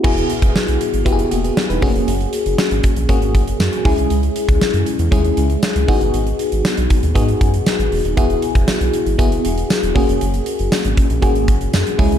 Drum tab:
CC |x---------------|----------------|----------------|----------------|
HH |-xxx-xxxxxxx-xox|xxxx-xxxxxxx-xox|xxxx-xxxxxxx-xox|xxxx-xxxxxxx-xox|
TB |----------------|----x-------x---|----x-------x---|----x-------x---|
SD |----o-------o---|----o-------o---|----o-------o---|----o-------o---|
BD |o--o----o-----o-|------o-o-o---o-|---o----o-----o-|------o-o-o-----|

CC |----------------|----------------|
HH |xxxx-xxxxxxx-xox|xxxx-xxxxxxx-xox|
TB |----x-------x---|----x-------x---|
SD |----o-------o---|----o-------o---|
BD |o--o----o-----o-|------o-o-o---o-|